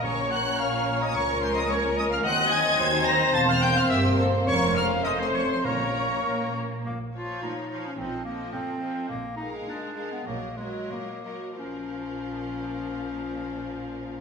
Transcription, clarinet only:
X:1
M:2/4
L:1/16
Q:1/4=105
K:Bbm
V:1 name="Clarinet"
d2 g2 f3 e | d2 c e d2 e f | g2 a4 b2 | =a f =g f =e2 z2 |
d2 f2 e c d c | B6 z2 | B,2 F2 E3 D | C2 B,2 C4 |
B,2 E2 =D3 _C | B,2 A,2 B,4 | D8- | D8 |]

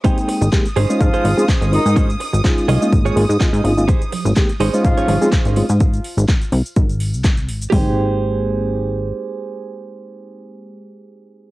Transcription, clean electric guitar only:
X:1
M:4/4
L:1/16
Q:"Swing 16ths" 1/4=125
K:Ab
V:1 name="Clean electric guitar"
[EGAc] z4 z [DEAc]2 z [DEAc] z2 [DEAc]2 z2 | [DFAc] z4 z [DFAe]2 z [EFAd] z2 [EFAe]2 z2 | [EGAc] z4 z [DEAc]2 z [DEAd] z2 [DEAc]2 z2 | z16 |
[GAc]16- | [GAc]16 |]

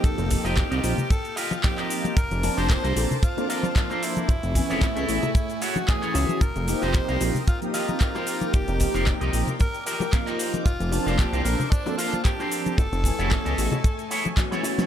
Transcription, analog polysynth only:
X:1
M:4/4
L:1/16
Q:"Swing 16ths" 1/4=113
K:Fmix
V:1 name="Analog polysynth"
[F,B,CEG]2 [F,B,CEG]4 [F,B,CEG] z4 z [F,B,CEF]4 | z2 [F,B,CDa]4 [F,B,CDA] z2 [F,B,CDA] [F,B,CDa]6 | z2 [=E,A,=B,^C^g]4 [E,A,B,C^G] z4 z [E,A,B,C_G]4 | z2 [F,B,CEG]4 [F,B,CEG] z2 [F,B,CEG] [F,B,CEG]6- |
[F,B,CEG]2 [F,B,CEG]4 [F,B,CEG] z4 z [F,B,CEF]4 | z2 [F,B,CDa]4 [F,B,CDA] z2 [F,B,CDA] [F,B,CDa]6 | z2 [=E,A,=B,^C^g]4 [E,A,B,C^G] z4 z [E,A,B,C_G]4 |]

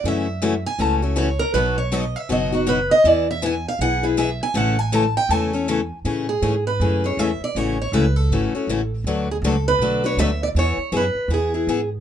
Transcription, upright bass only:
X:1
M:4/4
L:1/8
Q:"Swing" 1/4=160
K:A
V:1 name="Upright bass" clef=bass
F,,4 C,,4 | B,,,4 F,,,4 | E,,4 B,,,4 | A,,,4 E,,4 |
A,,2 G,,2 F,,2 E,, z | A,,,2 C,,2 G,,, z A,,,2 | D,,2 C,,2 B,,,2 D,,2 | E,, z F,, z E,,2 G,,2 |]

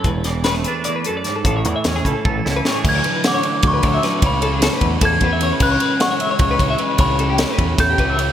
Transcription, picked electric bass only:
X:1
M:7/8
L:1/16
Q:1/4=152
K:A
V:1 name="Picked electric bass" clef=bass
E,,,8 z6 | A,,,2 E,, z E,,2 C,, z A,,,2 C,,2 z2 | D,,2 z6 D,,2 D,,2 z2 | C,,6 E,,2 E,,2 E,,4 |
C,,2 z6 C,,2 C,,2 z2 | C,,6 E,,2 E,,2 C,,4 |]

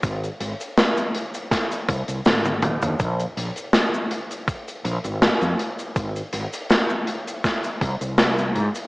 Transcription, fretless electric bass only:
X:1
M:4/4
L:1/16
Q:"Swing 16ths" 1/4=81
K:Ab
V:1 name="Fretless electric bass" clef=bass
A,,, z A,,, z6 z C,, C,, A,,,2 E,, E,, | B,,, z B,,, z6 z B,,, A,,, z F,, z2 | A,,, z A,,, z6 z C,, C,,3 A,, z |]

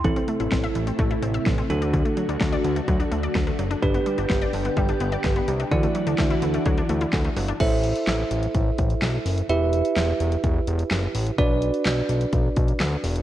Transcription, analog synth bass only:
X:1
M:4/4
L:1/16
Q:1/4=127
K:Ador
V:1 name="Analog synth bass" clef=bass
A,,,2 z A,,, A,,,2 A,,,2 A,,,2 A,,,2 A,,,2 D,,2- | D,,2 z D,, D,,2 D,,2 D,,2 D,,2 D,,2 F,,,2 | G,,,2 z G,,, G,,,2 G,,,2 G,,,2 G,,,2 G,,,2 C,,2 | D,,2 z D,, D,,2 D,,2 D,,2 D,,2 D,,2 G,,,2 |
A,,,4 A,,,2 A,,,2 A,,,2 A,,,2 B,,,2 F,,,2 | E,,,4 E,,,2 E,,,2 E,,,2 E,,,2 F,,,2 A,,,2 | B,,,4 B,,,2 B,,,2 B,,,2 B,,,2 D,,2 E,,,2 |]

